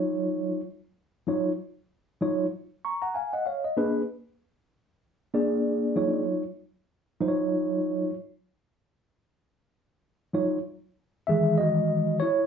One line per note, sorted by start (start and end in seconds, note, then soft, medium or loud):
0.00 0.60 F#3 medium
0.00 0.60 D#4 medium
0.00 0.60 F4 medium
0.00 0.60 C#5 medium
1.27 1.51 F#3 medium
1.27 1.51 D#4 medium
1.27 1.51 F4 medium
1.27 1.52 C#5 medium
2.21 2.45 F#3 medium
2.21 2.45 D#4 medium
2.21 2.45 F4 medium
2.21 2.45 C#5 medium
2.85 3.00 A#5 medium
2.85 3.02 C#6 medium
3.02 3.15 F#5 medium
3.02 3.14 A#5 medium
3.15 3.33 F5 medium
3.15 3.32 G#5 medium
3.33 3.46 D#5 medium
3.33 3.46 F#5 medium
3.46 3.64 C#5 soft
3.46 3.63 F5 medium
3.65 3.94 D#5 medium
3.77 4.01 A#3 medium
3.77 4.01 D4 medium
3.77 4.01 G#4 medium
3.77 4.01 B4 medium
5.34 6.22 A#3 medium
5.34 6.23 D4 medium
5.34 6.23 G#4 medium
5.34 6.23 D5 medium
5.96 6.42 F#3 medium
5.96 6.42 D#4 medium
5.96 6.42 F4 medium
5.96 6.43 C#5 medium
7.20 8.10 F#3 medium
7.20 8.10 D#4 medium
7.20 8.10 F4 medium
7.20 7.29 C5 medium
7.28 8.13 C#5 medium
10.33 10.57 F#3 medium
10.33 10.58 D#4 medium
10.33 10.58 F4 medium
10.33 10.58 C#5 medium
11.27 12.18 D#3 medium
11.27 12.18 E3 soft
11.27 12.18 G#3 soft
11.27 11.58 G#4 medium
11.27 11.56 E5 medium
11.58 12.18 F#4 medium
11.58 12.17 D#5 medium
12.20 12.46 E4 medium
12.20 12.46 C#5 loud